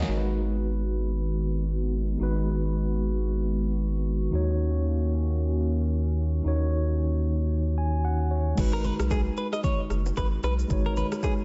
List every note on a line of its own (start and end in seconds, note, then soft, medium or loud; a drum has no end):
0.00 0.22 C#5 medium
0.00 0.10 F#5 medium
0.00 snare loud
0.06 2.17 G#1 medium
0.06 4.29 D#3 medium
0.06 2.15 G#3 medium
0.06 4.29 G#3 medium
0.06 4.29 B3 medium
0.06 2.16 D#4 medium
0.06 8.54 F#4 medium
0.06 2.17 F#4 medium
0.11 0.17 A#4 medium
0.17 2.21 B4 medium
2.18 4.29 G#1 medium
2.18 4.28 G#3 medium
2.18 4.29 D#4 medium
2.18 4.29 F#4 medium
2.23 4.30 B4 medium
4.30 6.41 D#2 medium
4.30 6.40 D#3 medium
4.30 8.54 D#3 medium
4.30 8.54 A#3 medium
4.30 8.54 C#4 medium
4.30 6.41 D#4 medium
4.30 6.42 F#4 medium
4.35 6.42 C#5 medium
6.43 8.54 D#2 medium
6.43 8.52 D#3 medium
6.43 8.53 D#4 medium
6.43 8.54 F#4 medium
6.48 8.30 C#5 medium
7.78 8.03 G#5 medium
8.05 8.29 F#5 medium
8.31 8.56 C#5 medium
8.55 8.91 G#1 loud
8.55 10.65 G#3 medium
8.55 10.66 D#4 medium
8.55 10.66 F#4 medium
8.55 kick loud
8.55 crash medium
8.55 low conga medium
8.55 shaker medium
8.60 10.67 B4 medium
8.73 8.85 A#4 medium
8.84 8.94 B4 medium
8.84 low bongo soft
8.84 low conga medium
8.84 shaker medium
8.99 9.30 B1 medium
8.99 cross-stick loud
8.99 shaker medium
9.10 9.20 G#4 medium
9.10 kick loud
9.10 high bongo medium
9.10 shaker medium
9.37 9.47 B4 medium
9.37 shaker medium
9.53 9.60 D#5 medium
9.53 cross-stick loud
9.53 shaker medium
9.64 9.80 C#5 medium
9.64 kick loud
9.64 low conga medium
9.64 shaker medium
9.90 10.12 F#1 loud
9.90 cross-stick medium
9.90 shaker soft
10.06 low bongo medium
10.06 shaker medium
10.17 10.38 G#1 loud
10.17 10.27 B4 medium
10.17 kick medium
10.17 cross-stick medium
10.17 high bongo medium
10.17 shaker medium
10.43 10.65 B1 loud
10.43 10.53 B4 medium
10.43 cross-stick medium
10.43 low bongo medium
10.43 shaker medium
10.59 shaker medium
10.68 11.03 G#1 loud
10.68 11.45 G#3 medium
10.68 11.45 D#4 medium
10.68 11.45 F#4 medium
10.68 kick loud
10.68 low conga medium
10.68 shaker medium
10.73 11.45 C#5 medium
10.86 10.93 A#4 medium
10.96 11.07 B4 medium
10.96 low bongo soft
10.96 low conga medium
10.96 shaker medium
11.12 cross-stick loud
11.12 shaker medium
11.23 11.33 G#4 medium
11.23 kick medium
11.23 high bongo medium
11.23 shaker medium